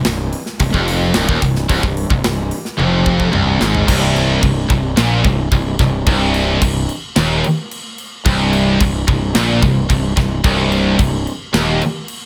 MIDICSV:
0, 0, Header, 1, 4, 480
1, 0, Start_track
1, 0, Key_signature, -3, "minor"
1, 0, Tempo, 546448
1, 1493, Time_signature, 4, 2, 24, 8
1, 10766, End_track
2, 0, Start_track
2, 0, Title_t, "Distorted electric guitar"
2, 0, Program_c, 0, 30
2, 55, Note_on_c, 0, 36, 73
2, 246, Note_off_c, 0, 36, 0
2, 531, Note_on_c, 0, 36, 70
2, 652, Note_off_c, 0, 36, 0
2, 657, Note_on_c, 0, 41, 93
2, 1004, Note_off_c, 0, 41, 0
2, 1008, Note_on_c, 0, 36, 104
2, 1122, Note_off_c, 0, 36, 0
2, 1126, Note_on_c, 0, 39, 105
2, 1242, Note_off_c, 0, 39, 0
2, 1252, Note_on_c, 0, 36, 68
2, 1445, Note_off_c, 0, 36, 0
2, 1486, Note_on_c, 0, 36, 106
2, 1603, Note_off_c, 0, 36, 0
2, 1613, Note_on_c, 0, 36, 75
2, 1805, Note_off_c, 0, 36, 0
2, 1857, Note_on_c, 0, 36, 62
2, 1964, Note_off_c, 0, 36, 0
2, 1975, Note_on_c, 0, 36, 74
2, 2166, Note_off_c, 0, 36, 0
2, 2450, Note_on_c, 0, 41, 113
2, 2922, Note_off_c, 0, 41, 0
2, 2925, Note_on_c, 0, 36, 97
2, 3162, Note_off_c, 0, 36, 0
2, 3171, Note_on_c, 0, 44, 97
2, 3400, Note_off_c, 0, 44, 0
2, 3403, Note_on_c, 0, 36, 116
2, 3872, Note_off_c, 0, 36, 0
2, 3883, Note_on_c, 0, 36, 78
2, 4080, Note_off_c, 0, 36, 0
2, 4129, Note_on_c, 0, 36, 80
2, 4323, Note_off_c, 0, 36, 0
2, 4377, Note_on_c, 0, 46, 108
2, 4607, Note_off_c, 0, 46, 0
2, 4611, Note_on_c, 0, 36, 79
2, 4804, Note_off_c, 0, 36, 0
2, 4857, Note_on_c, 0, 36, 75
2, 5047, Note_off_c, 0, 36, 0
2, 5100, Note_on_c, 0, 36, 72
2, 5288, Note_off_c, 0, 36, 0
2, 5332, Note_on_c, 0, 36, 122
2, 5805, Note_off_c, 0, 36, 0
2, 5820, Note_on_c, 0, 36, 78
2, 6009, Note_off_c, 0, 36, 0
2, 6290, Note_on_c, 0, 39, 112
2, 6524, Note_off_c, 0, 39, 0
2, 7248, Note_on_c, 0, 36, 109
2, 7724, Note_off_c, 0, 36, 0
2, 7734, Note_on_c, 0, 36, 85
2, 7926, Note_off_c, 0, 36, 0
2, 7972, Note_on_c, 0, 36, 85
2, 8165, Note_off_c, 0, 36, 0
2, 8215, Note_on_c, 0, 46, 109
2, 8447, Note_off_c, 0, 46, 0
2, 8453, Note_on_c, 0, 36, 80
2, 8646, Note_off_c, 0, 36, 0
2, 8692, Note_on_c, 0, 36, 76
2, 8885, Note_off_c, 0, 36, 0
2, 8930, Note_on_c, 0, 36, 82
2, 9124, Note_off_c, 0, 36, 0
2, 9171, Note_on_c, 0, 36, 112
2, 9638, Note_off_c, 0, 36, 0
2, 9649, Note_on_c, 0, 36, 75
2, 9844, Note_off_c, 0, 36, 0
2, 10129, Note_on_c, 0, 39, 111
2, 10366, Note_off_c, 0, 39, 0
2, 10766, End_track
3, 0, Start_track
3, 0, Title_t, "Fingered electric bass"
3, 0, Program_c, 1, 33
3, 53, Note_on_c, 1, 24, 77
3, 276, Note_off_c, 1, 24, 0
3, 531, Note_on_c, 1, 24, 72
3, 643, Note_off_c, 1, 24, 0
3, 647, Note_on_c, 1, 29, 96
3, 985, Note_off_c, 1, 29, 0
3, 1020, Note_on_c, 1, 24, 92
3, 1128, Note_off_c, 1, 24, 0
3, 1135, Note_on_c, 1, 27, 97
3, 1246, Note_off_c, 1, 27, 0
3, 1251, Note_on_c, 1, 24, 74
3, 1476, Note_off_c, 1, 24, 0
3, 1492, Note_on_c, 1, 24, 97
3, 1604, Note_off_c, 1, 24, 0
3, 1610, Note_on_c, 1, 24, 76
3, 1835, Note_off_c, 1, 24, 0
3, 1847, Note_on_c, 1, 24, 70
3, 1962, Note_off_c, 1, 24, 0
3, 1977, Note_on_c, 1, 24, 75
3, 2199, Note_off_c, 1, 24, 0
3, 2451, Note_on_c, 1, 29, 89
3, 2899, Note_off_c, 1, 29, 0
3, 2927, Note_on_c, 1, 24, 97
3, 3153, Note_off_c, 1, 24, 0
3, 3171, Note_on_c, 1, 32, 96
3, 3396, Note_off_c, 1, 32, 0
3, 3411, Note_on_c, 1, 24, 96
3, 3859, Note_off_c, 1, 24, 0
3, 3890, Note_on_c, 1, 24, 73
3, 4115, Note_off_c, 1, 24, 0
3, 4130, Note_on_c, 1, 24, 85
3, 4355, Note_off_c, 1, 24, 0
3, 4368, Note_on_c, 1, 34, 83
3, 4594, Note_off_c, 1, 34, 0
3, 4605, Note_on_c, 1, 24, 74
3, 4832, Note_off_c, 1, 24, 0
3, 4847, Note_on_c, 1, 24, 87
3, 5073, Note_off_c, 1, 24, 0
3, 5087, Note_on_c, 1, 24, 82
3, 5313, Note_off_c, 1, 24, 0
3, 5329, Note_on_c, 1, 24, 105
3, 5777, Note_off_c, 1, 24, 0
3, 5815, Note_on_c, 1, 24, 77
3, 6037, Note_off_c, 1, 24, 0
3, 6297, Note_on_c, 1, 27, 88
3, 6518, Note_off_c, 1, 27, 0
3, 7252, Note_on_c, 1, 24, 104
3, 7699, Note_off_c, 1, 24, 0
3, 7738, Note_on_c, 1, 24, 72
3, 7959, Note_off_c, 1, 24, 0
3, 7975, Note_on_c, 1, 24, 86
3, 8198, Note_off_c, 1, 24, 0
3, 8222, Note_on_c, 1, 34, 78
3, 8442, Note_off_c, 1, 34, 0
3, 8456, Note_on_c, 1, 24, 76
3, 8679, Note_off_c, 1, 24, 0
3, 8693, Note_on_c, 1, 24, 84
3, 8917, Note_off_c, 1, 24, 0
3, 8932, Note_on_c, 1, 24, 85
3, 9157, Note_off_c, 1, 24, 0
3, 9170, Note_on_c, 1, 24, 101
3, 9619, Note_off_c, 1, 24, 0
3, 9655, Note_on_c, 1, 24, 78
3, 9879, Note_off_c, 1, 24, 0
3, 10138, Note_on_c, 1, 27, 82
3, 10361, Note_off_c, 1, 27, 0
3, 10766, End_track
4, 0, Start_track
4, 0, Title_t, "Drums"
4, 42, Note_on_c, 9, 46, 86
4, 43, Note_on_c, 9, 38, 122
4, 130, Note_off_c, 9, 46, 0
4, 131, Note_off_c, 9, 38, 0
4, 287, Note_on_c, 9, 46, 58
4, 375, Note_off_c, 9, 46, 0
4, 405, Note_on_c, 9, 38, 29
4, 492, Note_off_c, 9, 38, 0
4, 523, Note_on_c, 9, 46, 78
4, 527, Note_on_c, 9, 36, 96
4, 611, Note_off_c, 9, 46, 0
4, 615, Note_off_c, 9, 36, 0
4, 650, Note_on_c, 9, 36, 75
4, 738, Note_off_c, 9, 36, 0
4, 772, Note_on_c, 9, 46, 63
4, 860, Note_off_c, 9, 46, 0
4, 1002, Note_on_c, 9, 46, 65
4, 1003, Note_on_c, 9, 38, 107
4, 1090, Note_off_c, 9, 46, 0
4, 1091, Note_off_c, 9, 38, 0
4, 1130, Note_on_c, 9, 36, 109
4, 1218, Note_off_c, 9, 36, 0
4, 1248, Note_on_c, 9, 46, 57
4, 1249, Note_on_c, 9, 36, 88
4, 1335, Note_off_c, 9, 46, 0
4, 1337, Note_off_c, 9, 36, 0
4, 1367, Note_on_c, 9, 38, 32
4, 1455, Note_off_c, 9, 38, 0
4, 1488, Note_on_c, 9, 46, 80
4, 1489, Note_on_c, 9, 36, 123
4, 1575, Note_off_c, 9, 46, 0
4, 1576, Note_off_c, 9, 36, 0
4, 1610, Note_on_c, 9, 36, 87
4, 1697, Note_off_c, 9, 36, 0
4, 1730, Note_on_c, 9, 46, 58
4, 1818, Note_off_c, 9, 46, 0
4, 1848, Note_on_c, 9, 36, 90
4, 1936, Note_off_c, 9, 36, 0
4, 1970, Note_on_c, 9, 46, 75
4, 1971, Note_on_c, 9, 38, 112
4, 2058, Note_off_c, 9, 46, 0
4, 2059, Note_off_c, 9, 38, 0
4, 2207, Note_on_c, 9, 46, 56
4, 2295, Note_off_c, 9, 46, 0
4, 2329, Note_on_c, 9, 38, 31
4, 2417, Note_off_c, 9, 38, 0
4, 2455, Note_on_c, 9, 48, 61
4, 2543, Note_off_c, 9, 48, 0
4, 2689, Note_on_c, 9, 36, 86
4, 2776, Note_off_c, 9, 36, 0
4, 2808, Note_on_c, 9, 36, 58
4, 2896, Note_off_c, 9, 36, 0
4, 2925, Note_on_c, 9, 45, 73
4, 3013, Note_off_c, 9, 45, 0
4, 3170, Note_on_c, 9, 38, 94
4, 3258, Note_off_c, 9, 38, 0
4, 3290, Note_on_c, 9, 43, 81
4, 3378, Note_off_c, 9, 43, 0
4, 3411, Note_on_c, 9, 36, 110
4, 3413, Note_on_c, 9, 49, 127
4, 3413, Note_on_c, 9, 57, 104
4, 3499, Note_off_c, 9, 36, 0
4, 3501, Note_off_c, 9, 49, 0
4, 3501, Note_off_c, 9, 57, 0
4, 3655, Note_on_c, 9, 57, 70
4, 3742, Note_off_c, 9, 57, 0
4, 3889, Note_on_c, 9, 57, 87
4, 3890, Note_on_c, 9, 36, 91
4, 3977, Note_off_c, 9, 57, 0
4, 3978, Note_off_c, 9, 36, 0
4, 4129, Note_on_c, 9, 36, 101
4, 4129, Note_on_c, 9, 57, 62
4, 4217, Note_off_c, 9, 36, 0
4, 4217, Note_off_c, 9, 57, 0
4, 4366, Note_on_c, 9, 57, 79
4, 4367, Note_on_c, 9, 38, 127
4, 4454, Note_off_c, 9, 57, 0
4, 4455, Note_off_c, 9, 38, 0
4, 4606, Note_on_c, 9, 57, 61
4, 4607, Note_on_c, 9, 36, 103
4, 4693, Note_off_c, 9, 57, 0
4, 4695, Note_off_c, 9, 36, 0
4, 4843, Note_on_c, 9, 57, 80
4, 4846, Note_on_c, 9, 36, 94
4, 4931, Note_off_c, 9, 57, 0
4, 4934, Note_off_c, 9, 36, 0
4, 5086, Note_on_c, 9, 57, 63
4, 5087, Note_on_c, 9, 38, 33
4, 5088, Note_on_c, 9, 36, 103
4, 5174, Note_off_c, 9, 57, 0
4, 5175, Note_off_c, 9, 38, 0
4, 5176, Note_off_c, 9, 36, 0
4, 5328, Note_on_c, 9, 57, 92
4, 5329, Note_on_c, 9, 36, 118
4, 5416, Note_off_c, 9, 57, 0
4, 5417, Note_off_c, 9, 36, 0
4, 5569, Note_on_c, 9, 57, 68
4, 5657, Note_off_c, 9, 57, 0
4, 5813, Note_on_c, 9, 36, 95
4, 5814, Note_on_c, 9, 57, 100
4, 5901, Note_off_c, 9, 36, 0
4, 5902, Note_off_c, 9, 57, 0
4, 6050, Note_on_c, 9, 57, 65
4, 6138, Note_off_c, 9, 57, 0
4, 6289, Note_on_c, 9, 57, 90
4, 6290, Note_on_c, 9, 38, 113
4, 6377, Note_off_c, 9, 57, 0
4, 6378, Note_off_c, 9, 38, 0
4, 6537, Note_on_c, 9, 57, 70
4, 6625, Note_off_c, 9, 57, 0
4, 6775, Note_on_c, 9, 57, 90
4, 6862, Note_off_c, 9, 57, 0
4, 7010, Note_on_c, 9, 57, 70
4, 7098, Note_off_c, 9, 57, 0
4, 7251, Note_on_c, 9, 57, 99
4, 7253, Note_on_c, 9, 36, 123
4, 7339, Note_off_c, 9, 57, 0
4, 7341, Note_off_c, 9, 36, 0
4, 7491, Note_on_c, 9, 57, 77
4, 7579, Note_off_c, 9, 57, 0
4, 7734, Note_on_c, 9, 57, 100
4, 7735, Note_on_c, 9, 36, 111
4, 7822, Note_off_c, 9, 57, 0
4, 7823, Note_off_c, 9, 36, 0
4, 7976, Note_on_c, 9, 36, 100
4, 7979, Note_on_c, 9, 57, 76
4, 8063, Note_off_c, 9, 36, 0
4, 8067, Note_off_c, 9, 57, 0
4, 8212, Note_on_c, 9, 38, 121
4, 8212, Note_on_c, 9, 57, 96
4, 8299, Note_off_c, 9, 57, 0
4, 8300, Note_off_c, 9, 38, 0
4, 8455, Note_on_c, 9, 36, 103
4, 8456, Note_on_c, 9, 57, 67
4, 8543, Note_off_c, 9, 36, 0
4, 8543, Note_off_c, 9, 57, 0
4, 8694, Note_on_c, 9, 36, 86
4, 8700, Note_on_c, 9, 57, 94
4, 8782, Note_off_c, 9, 36, 0
4, 8788, Note_off_c, 9, 57, 0
4, 8933, Note_on_c, 9, 36, 97
4, 8939, Note_on_c, 9, 57, 63
4, 8940, Note_on_c, 9, 38, 38
4, 9021, Note_off_c, 9, 36, 0
4, 9027, Note_off_c, 9, 57, 0
4, 9028, Note_off_c, 9, 38, 0
4, 9173, Note_on_c, 9, 36, 124
4, 9178, Note_on_c, 9, 57, 93
4, 9261, Note_off_c, 9, 36, 0
4, 9266, Note_off_c, 9, 57, 0
4, 9415, Note_on_c, 9, 57, 69
4, 9503, Note_off_c, 9, 57, 0
4, 9655, Note_on_c, 9, 36, 104
4, 9662, Note_on_c, 9, 57, 94
4, 9743, Note_off_c, 9, 36, 0
4, 9750, Note_off_c, 9, 57, 0
4, 9899, Note_on_c, 9, 57, 60
4, 9987, Note_off_c, 9, 57, 0
4, 10137, Note_on_c, 9, 57, 87
4, 10138, Note_on_c, 9, 38, 127
4, 10225, Note_off_c, 9, 57, 0
4, 10226, Note_off_c, 9, 38, 0
4, 10378, Note_on_c, 9, 57, 78
4, 10466, Note_off_c, 9, 57, 0
4, 10612, Note_on_c, 9, 57, 95
4, 10699, Note_off_c, 9, 57, 0
4, 10766, End_track
0, 0, End_of_file